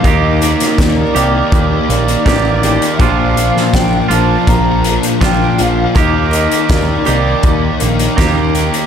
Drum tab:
HH |x-xxx-x-x-xxx-xx|x-x-x-x-x-xxx-x-|x-xxx-x-x-xxx-xx|
SD |---oo-------o---|---oo-------o---|----o-------o---|
BD |o---o---o---o---|o---o---o---o---|o---o---o---o---|